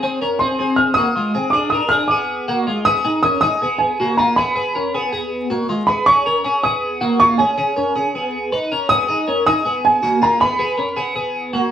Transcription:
0.03 C4 G#4
0.21 C#4 A#4
0.39 C4 G#4 C6
0.59 C4 G#4
0.76 F6
0.94 F#4 D#6
0.98 A#3
1.16 G#3 F4
1.35 C4 G#4
1.50 D4 G#4 D6
1.70 D4 A#4 D#6
1.89 D4 G#4 F6
2.08 B3 G#4 D6
2.48 A#3 F#4
2.67 G#3 F4
2.85 B3 G#4 D#6
3.05 D#4 G#4
3.23 C#4 A#4 D#6
3.41 D#4 G#4 D#6
3.62 B3 G#4
3.78 G#5
4.00 A#3 F#4
4.17 A#3 F4 A#5
4.36 B3 G#4 B5
4.55 B3 G#4
4.75 C#4 A#4
4.95 B3 G#4
5.13 B3 G#4
5.50 A#3 F#4
5.69 G#3 F4
5.87 B3 G#4 B5
6.06 C#4 G#4 C#6
6.26 C#4 A#4
6.44 C#4 G#4
6.63 B3 G#4 D#6
7.01 A#3 F#4
7.20 A#3 F4 C#6
7.38 C#4 G#4 G#5
7.58 C#4 G#4
7.77 C#4 A#4
7.96 C#4 G#4
8.15 B3 G#4
8.52 D#4 B4
8.72 C#4 A#4
8.89 B3 G#4 D#6
9.08 D#4 G#4
9.28 C#4 A#4
9.46 D#4 G#4 D#6
9.65 B3 G#4
9.85 G#5
10.03 A#3 F#4
10.22 A#3 F4 A#5
10.40 B3 G#4 B5
10.59 B3 G#4
10.78 C#4 A#4
10.96 B3 G#4
11.16 B3 G#4
11.53 A#3 F#4

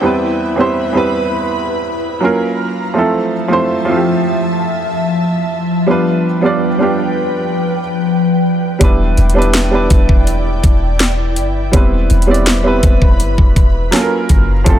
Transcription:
Already playing: E4
0.01 E2 G3 B3 C4 E4 B4 B5
0.06 B4
0.56 E2 G3 B3 C4 E4
0.60 C5
0.93 E2 G3 B3 C4 E4
0.97 B4
2.20 F#3 A#3 C#4 F4
2.25 A#4
2.94 F3 A3 C4 E4 E5 A5
2.98 A4
3.48 F3 A3 C4 E4
3.53 C5
3.85 F3 A3 C4 E4
3.90 F4
3.96 G4
5.86 G3 B3 D4 F4 B4 G5
5.91 B4
6.41 G3 B3 D4 F4
6.46 D5
6.78 G3 B3 D4 F4
6.83 G4
8.79 E1 G3 B3 D4 E4 D5 G5, kick, closed hi-hat
8.83 B4
9.17 E1, closed hi-hat
9.30 closed hi-hat
9.34 G3 B3 D4 E4
9.38 B4, closed hi-hat
9.54 snare, closed hi-hat
9.70 G3 B3 D4 E4
9.75 B4
9.90 E1, kick, closed hi-hat
10.09 kick
10.27 closed hi-hat
10.64 E1, kick, closed hi-hat
11.00 snare, closed hi-hat
11.36 G1, closed hi-hat
11.71 E1 G3 B3 C4 E4 B4 B5, kick, closed hi-hat
11.76 B4
12.10 E1, closed hi-hat
12.22 closed hi-hat
12.27 G3 B3 C4 E4
12.31 D5, closed hi-hat
12.46 snare, closed hi-hat
12.63 G3 B3 C4 E4
12.67 B4
12.83 E1, kick, closed hi-hat
13.02 kick
13.20 G1, closed hi-hat
13.38 E1, kick
13.56 kick, closed hi-hat
13.91 F#3 A#3 C#4 F4, snare, closed hi-hat
13.96 A4
14.02 A#4
14.29 F#1, kick, closed hi-hat
14.64 F1 F3 A3 C4 E4 E5 A5, kick, closed hi-hat
14.69 A4

